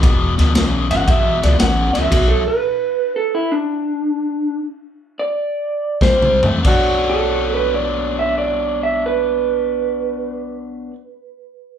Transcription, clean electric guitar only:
0, 0, Header, 1, 2, 480
1, 0, Start_track
1, 0, Key_signature, 2, "minor"
1, 0, Tempo, 521739
1, 29, Time_signature, 4, 2, 24, 8
1, 2909, Tempo, 543478
1, 3869, Tempo, 575264
1, 4829, Tempo, 621762
1, 5789, Tempo, 650759
1, 9580, End_track
2, 0, Start_track
2, 0, Title_t, "Clean electric guitar"
2, 0, Program_c, 0, 27
2, 836, Note_on_c, 0, 78, 83
2, 984, Note_off_c, 0, 78, 0
2, 1005, Note_on_c, 0, 76, 85
2, 1309, Note_off_c, 0, 76, 0
2, 1322, Note_on_c, 0, 74, 84
2, 1467, Note_off_c, 0, 74, 0
2, 1476, Note_on_c, 0, 78, 80
2, 1775, Note_off_c, 0, 78, 0
2, 1778, Note_on_c, 0, 76, 91
2, 1937, Note_on_c, 0, 66, 93
2, 2095, Note_off_c, 0, 66, 0
2, 2095, Note_on_c, 0, 69, 95
2, 2248, Note_off_c, 0, 76, 0
2, 2254, Note_off_c, 0, 69, 0
2, 2279, Note_on_c, 0, 71, 108
2, 2898, Note_off_c, 0, 71, 0
2, 2908, Note_on_c, 0, 69, 91
2, 3061, Note_off_c, 0, 69, 0
2, 3072, Note_on_c, 0, 64, 91
2, 3222, Note_off_c, 0, 64, 0
2, 3222, Note_on_c, 0, 62, 93
2, 4153, Note_off_c, 0, 62, 0
2, 4658, Note_on_c, 0, 74, 92
2, 5277, Note_off_c, 0, 74, 0
2, 5309, Note_on_c, 0, 72, 101
2, 5623, Note_off_c, 0, 72, 0
2, 6122, Note_on_c, 0, 69, 90
2, 6426, Note_off_c, 0, 69, 0
2, 6452, Note_on_c, 0, 71, 79
2, 6596, Note_off_c, 0, 71, 0
2, 6600, Note_on_c, 0, 74, 82
2, 6905, Note_off_c, 0, 74, 0
2, 6931, Note_on_c, 0, 76, 81
2, 7068, Note_off_c, 0, 76, 0
2, 7071, Note_on_c, 0, 74, 81
2, 7381, Note_off_c, 0, 74, 0
2, 7405, Note_on_c, 0, 76, 75
2, 7553, Note_off_c, 0, 76, 0
2, 7572, Note_on_c, 0, 71, 92
2, 9580, Note_off_c, 0, 71, 0
2, 9580, End_track
0, 0, End_of_file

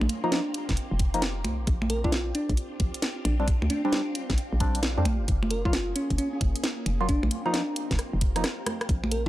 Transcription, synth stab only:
0, 0, Header, 1, 2, 480
1, 0, Start_track
1, 0, Key_signature, -2, "major"
1, 0, Tempo, 451128
1, 1780, Time_signature, 4, 2, 24, 8
1, 9881, End_track
2, 0, Start_track
2, 0, Title_t, "Synth stab"
2, 0, Program_c, 0, 62
2, 253, Note_on_c, 0, 58, 90
2, 254, Note_on_c, 0, 53, 98
2, 254, Note_on_c, 0, 63, 105
2, 430, Note_off_c, 0, 53, 0
2, 430, Note_off_c, 0, 58, 0
2, 430, Note_off_c, 0, 63, 0
2, 1214, Note_on_c, 0, 63, 100
2, 1215, Note_on_c, 0, 53, 85
2, 1215, Note_on_c, 0, 58, 79
2, 1299, Note_off_c, 0, 53, 0
2, 1299, Note_off_c, 0, 58, 0
2, 1299, Note_off_c, 0, 63, 0
2, 2174, Note_on_c, 0, 55, 76
2, 2174, Note_on_c, 0, 60, 72
2, 2174, Note_on_c, 0, 62, 88
2, 2259, Note_off_c, 0, 55, 0
2, 2259, Note_off_c, 0, 60, 0
2, 2259, Note_off_c, 0, 62, 0
2, 3614, Note_on_c, 0, 55, 94
2, 3614, Note_on_c, 0, 60, 85
2, 3614, Note_on_c, 0, 62, 102
2, 3699, Note_off_c, 0, 55, 0
2, 3699, Note_off_c, 0, 60, 0
2, 3699, Note_off_c, 0, 62, 0
2, 4095, Note_on_c, 0, 55, 101
2, 4095, Note_on_c, 0, 60, 90
2, 4095, Note_on_c, 0, 62, 109
2, 4271, Note_off_c, 0, 55, 0
2, 4271, Note_off_c, 0, 60, 0
2, 4271, Note_off_c, 0, 62, 0
2, 4900, Note_on_c, 0, 55, 87
2, 4901, Note_on_c, 0, 60, 80
2, 4901, Note_on_c, 0, 62, 94
2, 5105, Note_off_c, 0, 55, 0
2, 5105, Note_off_c, 0, 60, 0
2, 5105, Note_off_c, 0, 62, 0
2, 5296, Note_on_c, 0, 55, 82
2, 5296, Note_on_c, 0, 60, 75
2, 5296, Note_on_c, 0, 62, 91
2, 5380, Note_off_c, 0, 55, 0
2, 5380, Note_off_c, 0, 60, 0
2, 5380, Note_off_c, 0, 62, 0
2, 6016, Note_on_c, 0, 54, 78
2, 6016, Note_on_c, 0, 58, 69
2, 6016, Note_on_c, 0, 65, 83
2, 6100, Note_off_c, 0, 54, 0
2, 6100, Note_off_c, 0, 58, 0
2, 6100, Note_off_c, 0, 65, 0
2, 7455, Note_on_c, 0, 54, 91
2, 7455, Note_on_c, 0, 58, 81
2, 7455, Note_on_c, 0, 65, 102
2, 7529, Note_off_c, 0, 65, 0
2, 7530, Note_off_c, 0, 54, 0
2, 7530, Note_off_c, 0, 58, 0
2, 7934, Note_on_c, 0, 53, 100
2, 7934, Note_on_c, 0, 58, 89
2, 7934, Note_on_c, 0, 63, 112
2, 8110, Note_off_c, 0, 53, 0
2, 8111, Note_off_c, 0, 58, 0
2, 8111, Note_off_c, 0, 63, 0
2, 8895, Note_on_c, 0, 53, 90
2, 8895, Note_on_c, 0, 58, 79
2, 8895, Note_on_c, 0, 63, 98
2, 8979, Note_off_c, 0, 53, 0
2, 8979, Note_off_c, 0, 58, 0
2, 8979, Note_off_c, 0, 63, 0
2, 9881, End_track
0, 0, End_of_file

